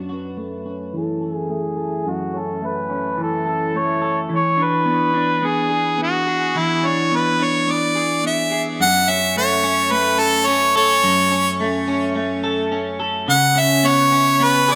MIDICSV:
0, 0, Header, 1, 3, 480
1, 0, Start_track
1, 0, Key_signature, 3, "minor"
1, 0, Tempo, 560748
1, 1763, Time_signature, 4, 2, 24, 8
1, 12627, End_track
2, 0, Start_track
2, 0, Title_t, "Harmonica"
2, 0, Program_c, 0, 22
2, 0, Note_on_c, 0, 73, 77
2, 108, Note_on_c, 0, 71, 78
2, 121, Note_off_c, 0, 73, 0
2, 815, Note_off_c, 0, 71, 0
2, 833, Note_on_c, 0, 69, 81
2, 1150, Note_off_c, 0, 69, 0
2, 1150, Note_on_c, 0, 68, 81
2, 1301, Note_off_c, 0, 68, 0
2, 1301, Note_on_c, 0, 68, 82
2, 1794, Note_on_c, 0, 66, 80
2, 1807, Note_off_c, 0, 68, 0
2, 2042, Note_on_c, 0, 69, 72
2, 2054, Note_off_c, 0, 66, 0
2, 2281, Note_on_c, 0, 71, 77
2, 2294, Note_off_c, 0, 69, 0
2, 2742, Note_off_c, 0, 71, 0
2, 2763, Note_on_c, 0, 69, 88
2, 3239, Note_on_c, 0, 73, 88
2, 3252, Note_off_c, 0, 69, 0
2, 3581, Note_off_c, 0, 73, 0
2, 3725, Note_on_c, 0, 73, 90
2, 3968, Note_on_c, 0, 71, 90
2, 3980, Note_off_c, 0, 73, 0
2, 4677, Note_on_c, 0, 68, 89
2, 4690, Note_off_c, 0, 71, 0
2, 5140, Note_off_c, 0, 68, 0
2, 5160, Note_on_c, 0, 66, 84
2, 5633, Note_on_c, 0, 64, 83
2, 5646, Note_off_c, 0, 66, 0
2, 5882, Note_on_c, 0, 73, 78
2, 5895, Note_off_c, 0, 64, 0
2, 6124, Note_on_c, 0, 71, 87
2, 6137, Note_off_c, 0, 73, 0
2, 6368, Note_on_c, 0, 73, 81
2, 6381, Note_off_c, 0, 71, 0
2, 6602, Note_on_c, 0, 74, 96
2, 6615, Note_off_c, 0, 73, 0
2, 7062, Note_off_c, 0, 74, 0
2, 7076, Note_on_c, 0, 76, 85
2, 7395, Note_off_c, 0, 76, 0
2, 7549, Note_on_c, 0, 78, 120
2, 7782, Note_on_c, 0, 76, 108
2, 7795, Note_off_c, 0, 78, 0
2, 8012, Note_off_c, 0, 76, 0
2, 8022, Note_on_c, 0, 73, 101
2, 8485, Note_on_c, 0, 71, 104
2, 8498, Note_off_c, 0, 73, 0
2, 8722, Note_on_c, 0, 69, 97
2, 8735, Note_off_c, 0, 71, 0
2, 8958, Note_on_c, 0, 73, 100
2, 8971, Note_off_c, 0, 69, 0
2, 9200, Note_off_c, 0, 73, 0
2, 9216, Note_on_c, 0, 73, 96
2, 9895, Note_off_c, 0, 73, 0
2, 11384, Note_on_c, 0, 78, 117
2, 11636, Note_on_c, 0, 76, 110
2, 11648, Note_off_c, 0, 78, 0
2, 11876, Note_on_c, 0, 73, 99
2, 11889, Note_off_c, 0, 76, 0
2, 12360, Note_on_c, 0, 71, 106
2, 12373, Note_off_c, 0, 73, 0
2, 12614, Note_off_c, 0, 71, 0
2, 12627, End_track
3, 0, Start_track
3, 0, Title_t, "Clean electric guitar"
3, 0, Program_c, 1, 27
3, 0, Note_on_c, 1, 42, 69
3, 0, Note_on_c, 1, 66, 70
3, 81, Note_on_c, 1, 61, 50
3, 317, Note_on_c, 1, 57, 56
3, 549, Note_off_c, 1, 61, 0
3, 559, Note_on_c, 1, 61, 57
3, 798, Note_on_c, 1, 52, 58
3, 824, Note_off_c, 1, 66, 0
3, 1035, Note_on_c, 1, 69, 59
3, 1264, Note_off_c, 1, 57, 0
3, 1274, Note_on_c, 1, 57, 51
3, 1503, Note_off_c, 1, 69, 0
3, 1513, Note_on_c, 1, 69, 59
3, 1748, Note_off_c, 1, 42, 0
3, 1759, Note_on_c, 1, 42, 64
3, 1987, Note_off_c, 1, 61, 0
3, 1997, Note_on_c, 1, 61, 52
3, 2230, Note_off_c, 1, 57, 0
3, 2240, Note_on_c, 1, 57, 55
3, 2468, Note_off_c, 1, 61, 0
3, 2478, Note_on_c, 1, 61, 56
3, 2715, Note_off_c, 1, 52, 0
3, 2718, Note_on_c, 1, 52, 66
3, 2949, Note_off_c, 1, 69, 0
3, 2960, Note_on_c, 1, 69, 60
3, 3192, Note_off_c, 1, 57, 0
3, 3203, Note_on_c, 1, 57, 55
3, 3427, Note_off_c, 1, 69, 0
3, 3437, Note_on_c, 1, 69, 59
3, 3674, Note_off_c, 1, 52, 0
3, 3674, Note_on_c, 1, 52, 69
3, 3681, Note_off_c, 1, 42, 0
3, 3728, Note_off_c, 1, 61, 0
3, 3728, Note_off_c, 1, 69, 0
3, 3731, Note_off_c, 1, 57, 0
3, 3913, Note_on_c, 1, 62, 51
3, 4155, Note_on_c, 1, 59, 57
3, 4389, Note_off_c, 1, 62, 0
3, 4399, Note_on_c, 1, 62, 58
3, 4633, Note_off_c, 1, 59, 0
3, 4643, Note_on_c, 1, 59, 59
3, 4878, Note_on_c, 1, 68, 60
3, 5109, Note_off_c, 1, 59, 0
3, 5119, Note_on_c, 1, 59, 51
3, 5358, Note_off_c, 1, 68, 0
3, 5368, Note_on_c, 1, 68, 56
3, 5603, Note_off_c, 1, 52, 0
3, 5606, Note_on_c, 1, 52, 70
3, 5837, Note_off_c, 1, 62, 0
3, 5848, Note_on_c, 1, 62, 54
3, 6078, Note_off_c, 1, 59, 0
3, 6088, Note_on_c, 1, 59, 55
3, 6317, Note_off_c, 1, 62, 0
3, 6327, Note_on_c, 1, 62, 59
3, 6557, Note_off_c, 1, 59, 0
3, 6567, Note_on_c, 1, 59, 61
3, 6797, Note_off_c, 1, 68, 0
3, 6808, Note_on_c, 1, 68, 61
3, 7041, Note_off_c, 1, 59, 0
3, 7051, Note_on_c, 1, 59, 54
3, 7278, Note_off_c, 1, 68, 0
3, 7288, Note_on_c, 1, 68, 61
3, 7531, Note_on_c, 1, 42, 80
3, 7556, Note_off_c, 1, 52, 0
3, 7573, Note_off_c, 1, 62, 0
3, 7573, Note_off_c, 1, 68, 0
3, 7575, Note_off_c, 1, 59, 0
3, 7773, Note_on_c, 1, 61, 61
3, 8014, Note_on_c, 1, 57, 66
3, 8245, Note_off_c, 1, 61, 0
3, 8248, Note_on_c, 1, 61, 69
3, 8471, Note_off_c, 1, 57, 0
3, 8481, Note_on_c, 1, 57, 66
3, 8724, Note_on_c, 1, 69, 69
3, 8962, Note_off_c, 1, 61, 0
3, 8965, Note_on_c, 1, 61, 66
3, 9197, Note_off_c, 1, 69, 0
3, 9207, Note_on_c, 1, 69, 75
3, 9436, Note_off_c, 1, 42, 0
3, 9446, Note_on_c, 1, 42, 86
3, 9682, Note_off_c, 1, 61, 0
3, 9685, Note_on_c, 1, 61, 64
3, 9922, Note_off_c, 1, 57, 0
3, 9932, Note_on_c, 1, 57, 68
3, 10161, Note_off_c, 1, 61, 0
3, 10164, Note_on_c, 1, 61, 69
3, 10395, Note_off_c, 1, 57, 0
3, 10405, Note_on_c, 1, 57, 63
3, 10636, Note_off_c, 1, 69, 0
3, 10646, Note_on_c, 1, 69, 76
3, 10882, Note_off_c, 1, 61, 0
3, 10885, Note_on_c, 1, 61, 65
3, 11115, Note_off_c, 1, 69, 0
3, 11125, Note_on_c, 1, 69, 74
3, 11364, Note_off_c, 1, 42, 0
3, 11366, Note_on_c, 1, 49, 90
3, 11412, Note_off_c, 1, 57, 0
3, 11412, Note_off_c, 1, 69, 0
3, 11599, Note_off_c, 1, 61, 0
3, 11603, Note_on_c, 1, 61, 64
3, 11842, Note_on_c, 1, 59, 71
3, 12076, Note_off_c, 1, 61, 0
3, 12086, Note_on_c, 1, 61, 68
3, 12322, Note_off_c, 1, 59, 0
3, 12326, Note_on_c, 1, 59, 71
3, 12568, Note_on_c, 1, 68, 77
3, 12627, Note_off_c, 1, 49, 0
3, 12627, Note_off_c, 1, 59, 0
3, 12627, Note_off_c, 1, 61, 0
3, 12627, Note_off_c, 1, 68, 0
3, 12627, End_track
0, 0, End_of_file